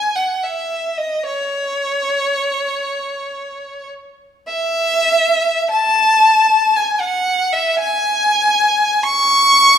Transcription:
violin
Already playing: G#5
0.15 F#5
0.43 E5
0.98 D#5
1.25 C#5
4.47 E5
5.71 A5
6.76 G#5
7.00 F#5
7.52 E5
7.79 G#5
9.03 C#6

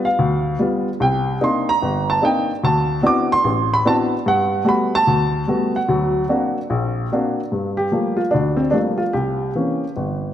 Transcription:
grand piano
0.05 F5
0.19 D2
0.59 G3 B3 F4
1.00 C2 G5
1.41 A#3 C4 D4 D#4 C6
1.69 A#5
1.82 G1
2.10 A5
2.22 A#3 C4 D4 D#4 G5
2.64 D2 A5
3.02 B3 C4 D4 E4 F#4
3.07 D6
3.32 C6
3.44 A1
3.74 B5
3.85 B3 C4 D4 E4 F#4 A5
4.26 G2 F#5
4.65 G3 A3 B3 F#4 B5
4.95 A5
5.07 D2
5.48 G3 A3 B3 F#4
5.76 F#5
5.89 D2 F#3
6.29 A#3 C4 D4 F#4
6.70 A#1
7.12 A#3 C4 D4 F#4
7.52 G2
7.77 G4
7.92 F3 G3 A3 A#3
8.17 F4
8.31 D2 D4
8.57 C4
8.71 F3 G3 A3 A#3 D4
8.98 F4
9.13 C2 G4
9.55 E3 A#3 C4 C#4
9.97 G1

